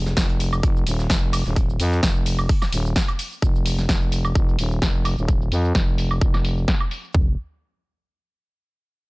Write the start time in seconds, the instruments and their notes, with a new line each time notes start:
Already playing: fm bass F1
0.06 snare, shaker
0.17 fm bass F1, kick, snare, closed hi-hat, shaker
0.29 closed hi-hat, shaker
0.40 closed hi-hat, open hi-hat, shaker
0.53 high woodblock, shaker
0.63 fm bass F1, kick, closed hi-hat, shaker
0.77 shaker
0.86 fm bass D#1, closed hi-hat, open hi-hat, shaker
0.99 snare, shaker
1.10 fm bass F1, kick, snare, closed hi-hat, shaker
1.23 shaker
1.33 closed hi-hat, open hi-hat, high woodblock, shaker
1.45 fm bass D#1, snare, shaker
1.56 kick, closed hi-hat, shaker
1.70 shaker
1.79 fm bass F2, closed hi-hat, open hi-hat, shaker
1.92 snare, shaker
2.03 fm bass F1, kick, snare, closed hi-hat, shaker
2.16 shaker
2.26 closed hi-hat, open hi-hat, shaker
2.39 high woodblock, shaker
2.49 kick, open hi-hat, shaker
2.62 snare, high woodblock, shaker
2.72 fm bass D#1, closed hi-hat, open hi-hat, shaker
2.86 shaker
2.96 kick, snare, closed hi-hat, shaker
3.08 closed hi-hat, high woodblock, shaker
3.19 closed hi-hat, open hi-hat, shaker
3.32 shaker
3.42 fm bass F1, kick, shaker
3.56 shaker
3.66 open hi-hat, shaker
3.79 snare, shaker
3.89 fm bass F1, kick, snare, shaker
4.02 shaker
4.12 open hi-hat, shaker
4.25 high woodblock, shaker
4.35 fm bass F1, kick, shaker
4.49 shaker
4.59 fm bass D#1, open hi-hat, shaker
4.72 shaker
4.82 fm bass F1, kick, snare, shaker
4.95 shaker
5.05 open hi-hat, high woodblock, shaker
5.18 fm bass D#1, shaker
5.28 kick, shaker
5.42 shaker
5.52 fm bass F2, open hi-hat, shaker
5.65 shaker
5.75 fm bass F1, kick, snare, shaker
5.88 shaker
5.98 open hi-hat, shaker
6.11 high woodblock, shaker
6.21 fm bass F1, kick, shaker
6.34 snare, high woodblock, shaker
6.45 open hi-hat, shaker
6.58 shaker
6.68 kick, snare, shaker
6.80 high woodblock, shaker
6.91 open hi-hat, shaker
7.04 shaker
7.14 fm bass F1, kick, floor tom